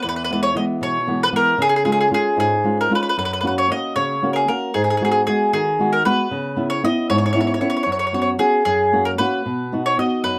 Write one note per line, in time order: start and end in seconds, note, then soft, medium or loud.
0.02 0.55 E2 medium
0.02 0.07 B4 medium
0.09 0.15 B4 medium
0.16 0.23 B4 medium
0.24 0.31 B4 medium
0.31 0.54 E3 soft
0.31 0.54 G#3 soft
0.31 0.54 B3 medium
0.31 0.40 B4 soft
0.43 0.55 C#5 medium
0.55 0.97 E3 soft
0.55 0.98 G#3 soft
0.55 0.98 B3 soft
0.55 0.63 D#5 medium
0.81 1.32 B2 medium
0.81 1.23 C#5 medium
1.07 1.31 E3 soft
1.07 1.31 G#3 soft
1.07 1.31 B3 medium
1.23 1.28 B4 medium
1.32 1.54 E3 medium
1.32 1.54 G#3 soft
1.32 1.54 B3 soft
1.32 1.62 A#4 medium
1.58 2.11 C#3 medium
1.58 1.68 G#4 medium
1.69 1.75 G#4 medium
1.76 1.84 G#4 medium
1.85 2.09 G#3 soft
1.85 2.10 C#4 soft
1.85 2.10 F4 soft
1.85 1.91 G#4 soft
1.92 2.00 G#4 medium
2.01 2.07 G#4 soft
2.11 2.54 G#3 soft
2.11 2.54 C#4 soft
2.11 2.54 F4 soft
2.11 2.38 G#4 medium
2.37 2.90 G#2 medium
2.37 2.77 G#4 medium
2.64 2.89 G#3 soft
2.64 2.90 C#4 soft
2.64 2.90 F4 soft
2.81 2.94 A#4 medium
2.90 3.12 G#3 soft
2.90 3.13 C#4 soft
2.90 3.13 F4 medium
2.95 3.01 B4 medium
3.03 3.08 B4 medium
3.09 3.16 B4 medium
3.18 3.70 F#2 medium
3.18 3.24 B4 medium
3.25 3.32 B4 medium
3.33 3.39 B4 medium
3.41 3.69 A#3 soft
3.41 3.70 C#4 soft
3.41 3.70 F#4 soft
3.41 3.46 B4 medium
3.47 3.55 B4 soft
3.58 3.71 C#5 medium
3.70 4.13 A#3 soft
3.70 4.14 C#4 soft
3.70 4.14 F#4 soft
3.70 3.95 D#5 medium
3.96 4.48 C#3 medium
3.96 4.30 C#5 medium
4.22 4.47 A#3 soft
4.22 4.47 C#4 soft
4.22 4.48 F#4 soft
4.33 4.49 G#4 medium
4.33 4.37 A#4 soft
4.48 4.70 A#3 soft
4.48 4.70 C#4 soft
4.48 4.71 F#4 medium
4.48 4.73 A#4 medium
4.74 5.26 G#2 medium
4.74 4.83 G#4 medium
4.84 4.89 G#4 soft
4.90 4.96 G#4 medium
4.97 5.26 G#3 soft
4.97 5.03 G#4 soft
5.02 5.27 B3 soft
5.02 5.28 F#4 soft
5.02 5.10 G#4 medium
5.12 5.20 G#4 medium
5.27 5.69 G#3 soft
5.27 5.69 B3 soft
5.27 5.70 F#4 soft
5.27 5.52 G#4 medium
5.53 6.04 D#3 medium
5.53 5.90 G#4 medium
5.79 6.04 G#3 soft
5.79 6.05 B3 soft
5.79 6.05 F#4 medium
5.93 6.05 A#4 medium
6.05 6.26 G#3 soft
6.05 6.27 B3 soft
6.05 6.27 F#4 medium
6.05 6.67 B4 medium
6.31 6.82 C#3 medium
6.56 6.82 B3 soft
6.56 6.83 C#4 soft
6.56 6.83 E4 soft
6.70 6.82 C#5 medium
6.83 7.25 B3 soft
6.83 7.26 C#4 soft
6.83 7.26 E4 soft
6.83 7.08 D#5 medium
7.10 7.60 G#2 medium
7.10 7.17 C#5 medium
7.18 7.24 C#5 medium
7.26 7.32 C#5 medium
7.33 7.60 B3 soft
7.33 7.60 C#4 soft
7.33 7.61 E4 medium
7.33 7.39 C#5 medium
7.40 7.46 C#5 medium
7.47 7.53 C#5 soft
7.54 7.60 C#5 medium
7.61 7.82 B3 medium
7.61 7.82 C#4 soft
7.61 7.83 E4 soft
7.61 7.68 C#5 soft
7.70 7.75 C#5 medium
7.77 7.82 C#5 soft
7.83 8.38 F#2 medium
7.83 7.91 C#5 medium
7.92 7.98 C#5 soft
7.99 8.06 C#5 medium
8.07 8.13 C#5 soft
8.13 8.37 B3 soft
8.13 8.38 C#4 soft
8.13 8.38 F#4 medium
8.13 8.20 C#5 soft
8.22 8.29 C#5 soft
8.39 8.60 B3 soft
8.39 8.61 C#4 soft
8.39 8.61 F#4 soft
8.39 8.64 G#4 medium
8.65 9.17 F#2 medium
8.65 9.03 G#4 medium
8.93 9.18 A#3 soft
8.93 9.19 C#4 soft
8.93 9.19 F#4 soft
9.05 9.10 A#4 medium
9.18 9.40 A#3 soft
9.18 9.41 C#4 soft
9.18 9.41 F#4 medium
9.18 9.81 B4 medium
9.46 9.97 B2 medium
9.72 9.97 B3 soft
9.72 9.97 D#4 soft
9.72 9.98 F#4 soft
9.86 9.98 C#5 medium
9.98 10.39 B3 soft
9.98 10.39 D#4 soft
9.98 10.39 F#4 soft
9.98 10.23 D#5 medium
10.24 10.39 F#2 medium
10.24 10.39 B4 medium